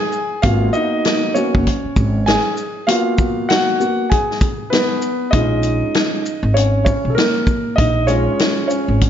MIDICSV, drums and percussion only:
0, 0, Header, 1, 2, 480
1, 0, Start_track
1, 0, Tempo, 612245
1, 339, Time_signature, 4, 2, 24, 8
1, 7132, End_track
2, 0, Start_track
2, 0, Title_t, "Drums"
2, 97, Note_on_c, 9, 82, 47
2, 176, Note_off_c, 9, 82, 0
2, 337, Note_on_c, 9, 42, 98
2, 341, Note_on_c, 9, 36, 113
2, 415, Note_off_c, 9, 42, 0
2, 420, Note_off_c, 9, 36, 0
2, 575, Note_on_c, 9, 82, 50
2, 654, Note_off_c, 9, 82, 0
2, 821, Note_on_c, 9, 42, 67
2, 828, Note_on_c, 9, 38, 111
2, 899, Note_off_c, 9, 42, 0
2, 906, Note_off_c, 9, 38, 0
2, 1063, Note_on_c, 9, 82, 53
2, 1141, Note_off_c, 9, 82, 0
2, 1213, Note_on_c, 9, 36, 91
2, 1291, Note_off_c, 9, 36, 0
2, 1306, Note_on_c, 9, 42, 81
2, 1309, Note_on_c, 9, 36, 74
2, 1385, Note_off_c, 9, 42, 0
2, 1388, Note_off_c, 9, 36, 0
2, 1540, Note_on_c, 9, 36, 98
2, 1541, Note_on_c, 9, 82, 55
2, 1618, Note_off_c, 9, 36, 0
2, 1619, Note_off_c, 9, 82, 0
2, 1782, Note_on_c, 9, 42, 82
2, 1788, Note_on_c, 9, 38, 125
2, 1860, Note_off_c, 9, 42, 0
2, 1867, Note_off_c, 9, 38, 0
2, 2016, Note_on_c, 9, 82, 49
2, 2095, Note_off_c, 9, 82, 0
2, 2260, Note_on_c, 9, 42, 104
2, 2339, Note_off_c, 9, 42, 0
2, 2493, Note_on_c, 9, 82, 46
2, 2497, Note_on_c, 9, 36, 93
2, 2571, Note_off_c, 9, 82, 0
2, 2575, Note_off_c, 9, 36, 0
2, 2742, Note_on_c, 9, 42, 76
2, 2749, Note_on_c, 9, 38, 121
2, 2820, Note_off_c, 9, 42, 0
2, 2827, Note_off_c, 9, 38, 0
2, 2985, Note_on_c, 9, 82, 59
2, 3063, Note_off_c, 9, 82, 0
2, 3225, Note_on_c, 9, 42, 80
2, 3228, Note_on_c, 9, 36, 79
2, 3303, Note_off_c, 9, 42, 0
2, 3306, Note_off_c, 9, 36, 0
2, 3378, Note_on_c, 9, 38, 37
2, 3457, Note_off_c, 9, 38, 0
2, 3459, Note_on_c, 9, 36, 96
2, 3459, Note_on_c, 9, 42, 59
2, 3459, Note_on_c, 9, 82, 56
2, 3537, Note_off_c, 9, 36, 0
2, 3537, Note_off_c, 9, 42, 0
2, 3537, Note_off_c, 9, 82, 0
2, 3704, Note_on_c, 9, 42, 86
2, 3711, Note_on_c, 9, 38, 120
2, 3783, Note_off_c, 9, 42, 0
2, 3790, Note_off_c, 9, 38, 0
2, 3935, Note_on_c, 9, 82, 50
2, 4014, Note_off_c, 9, 82, 0
2, 4176, Note_on_c, 9, 42, 95
2, 4180, Note_on_c, 9, 36, 106
2, 4255, Note_off_c, 9, 42, 0
2, 4258, Note_off_c, 9, 36, 0
2, 4413, Note_on_c, 9, 42, 48
2, 4413, Note_on_c, 9, 82, 43
2, 4491, Note_off_c, 9, 42, 0
2, 4491, Note_off_c, 9, 82, 0
2, 4660, Note_on_c, 9, 42, 66
2, 4667, Note_on_c, 9, 38, 111
2, 4738, Note_off_c, 9, 42, 0
2, 4745, Note_off_c, 9, 38, 0
2, 4906, Note_on_c, 9, 82, 57
2, 4984, Note_off_c, 9, 82, 0
2, 5147, Note_on_c, 9, 42, 91
2, 5225, Note_off_c, 9, 42, 0
2, 5380, Note_on_c, 9, 36, 89
2, 5383, Note_on_c, 9, 82, 58
2, 5458, Note_off_c, 9, 36, 0
2, 5461, Note_off_c, 9, 82, 0
2, 5627, Note_on_c, 9, 42, 86
2, 5634, Note_on_c, 9, 38, 126
2, 5705, Note_off_c, 9, 42, 0
2, 5712, Note_off_c, 9, 38, 0
2, 5855, Note_on_c, 9, 36, 89
2, 5858, Note_on_c, 9, 82, 49
2, 5934, Note_off_c, 9, 36, 0
2, 5936, Note_off_c, 9, 82, 0
2, 6101, Note_on_c, 9, 42, 86
2, 6102, Note_on_c, 9, 36, 104
2, 6179, Note_off_c, 9, 42, 0
2, 6181, Note_off_c, 9, 36, 0
2, 6335, Note_on_c, 9, 42, 45
2, 6335, Note_on_c, 9, 82, 41
2, 6414, Note_off_c, 9, 42, 0
2, 6414, Note_off_c, 9, 82, 0
2, 6581, Note_on_c, 9, 42, 68
2, 6587, Note_on_c, 9, 38, 111
2, 6659, Note_off_c, 9, 42, 0
2, 6666, Note_off_c, 9, 38, 0
2, 6823, Note_on_c, 9, 82, 58
2, 6902, Note_off_c, 9, 82, 0
2, 7066, Note_on_c, 9, 42, 95
2, 7069, Note_on_c, 9, 36, 73
2, 7132, Note_off_c, 9, 36, 0
2, 7132, Note_off_c, 9, 42, 0
2, 7132, End_track
0, 0, End_of_file